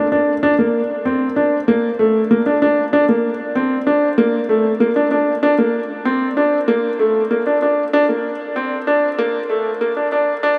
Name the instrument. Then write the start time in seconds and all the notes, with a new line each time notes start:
grand piano
0.12 D4
0.43 D4
0.59 A#3
1.05 C4
1.36 D4
1.68 A#3
1.99 A3
2.31 A#3
2.46 D4
2.62 D4
2.93 D4
3.09 A#3
3.55 C4
3.87 D4
4.18 A#3
4.49 A3
4.80 A#3
4.96 D4
5.11 D4
5.43 D4
5.58 A#3
6.05 C4
6.37 D4
6.68 A#3
6.99 A3
7.31 A#3
7.47 D4
7.62 D4
7.93 D4
8.09 A#3
8.56 C4
8.87 D4
9.18 A#3
9.50 A3
9.81 A#3
9.97 D4
10.12 D4
10.43 D4